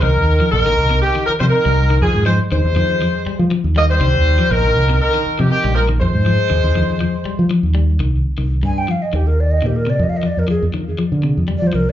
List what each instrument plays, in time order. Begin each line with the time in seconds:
0.01 fingered electric bass C2, tenor saxophone D#3, clean electric guitar D#3, horn section A#4
0.16 fingered electric bass D#2
0.40 clean electric guitar F3
0.51 fingered electric bass A#1, tenor saxophone D#3, horn section A#4
0.66 fingered electric bass A#1, clean electric guitar D#3
0.78 fingered electric bass C2
0.90 clean electric guitar C3
1.01 tenor saxophone D#3, horn section G4
1.15 clean electric guitar D#3
1.26 tenor saxophone F3, horn section A#4, muted fingered electric bass stroke
1.40 fingered electric bass C3, clean electric guitar F3, tenor saxophone G3, horn section C5
1.50 tenor saxophone D#3, horn section A#4
1.65 fingered electric bass C2, clean electric guitar G3
1.90 clean electric guitar D#3
2.00 fingered electric bass F2, tenor saxophone F3, horn section G#4
2.15 fingered electric bass G#2
2.25 clean electric guitar F3, tenor saxophone G#3, horn section C5
2.52 fingered electric bass D#2, clean electric guitar D#3, tenor saxophone G#3, horn section C5
2.64 fingered electric bass D#2
2.76 fingered electric bass F2, clean electric guitar D#3
3.02 clean electric guitar F3
3.26 clean electric guitar G3, muted fingered electric bass stroke
3.39 fingered electric bass F3
3.51 clean electric guitar F3
3.64 fingered electric bass D#2
3.76 clean electric guitar G3, tenor saxophone A#3, horn section D#5
3.90 tenor saxophone G3, horn section C5
4.00 fingered electric bass C2, clean electric guitar D#3
4.14 fingered electric bass D#2
4.39 clean electric guitar F3
4.50 fingered electric bass A#1, tenor saxophone D#3, horn section A#4
4.65 fingered electric bass A#1
4.76 fingered electric bass C2
4.89 clean electric guitar C3
5.00 tenor saxophone D#3, horn section A#4
5.14 clean electric guitar D#3
5.26 muted fingered electric bass stroke
5.39 fingered electric bass C3, tenor saxophone D#3, clean electric guitar F3, horn section G4
5.50 tenor saxophone D#3, horn section G4
5.64 fingered electric bass A#1, clean electric guitar G3
5.74 tenor saxophone F3, horn section A#4
5.89 clean electric guitar D#3
5.99 fingered electric bass F2, tenor saxophone G#3, horn section C5
6.14 fingered electric bass G#2
6.26 clean electric guitar F3
6.50 fingered electric bass D#2, clean electric guitar D#3
6.64 fingered electric bass D#2
6.75 fingered electric bass F2, clean electric guitar D#3
7.00 clean electric guitar F3
7.25 clean electric guitar G3, muted fingered electric bass stroke
7.39 fingered electric bass F3
7.51 clean electric guitar F3
7.63 fingered electric bass D#2
7.75 clean electric guitar G3
7.99 fingered electric bass C2, clean electric guitar D#3
8.38 fingered electric bass C2, clean electric guitar D#3
8.63 fingered electric bass G2, flute G#5, muted clean electric guitar stroke
8.78 flute G5
8.88 clean electric guitar F3, flute F5
9.02 flute D#5
9.13 fingered electric bass D#2, clean electric guitar D#3, flute G4
9.27 flute A#4
9.40 flute D5
9.51 flute D#5
9.62 fingered electric bass A#2, clean electric guitar D#3
9.66 flute G4
9.76 flute A#4
9.87 clean electric guitar C3, flute D5
9.99 fingered electric bass F2, flute D#5
10.09 flute F5
10.17 flute D#5
10.23 clean electric guitar F3, flute D5
10.37 fingered electric bass F2, flute A#4
10.48 clean electric guitar F3, flute G#4
10.62 fingered electric bass F2
10.74 clean electric guitar D#3
10.98 clean electric guitar F3
11.12 fingered electric bass D3
11.23 clean electric guitar C3
11.37 fingered electric bass F2
11.48 clean electric guitar G3
11.58 flute D5
11.62 fingered electric bass F3
11.67 flute C5
11.73 fingered electric bass C2, clean electric guitar F3, flute A#4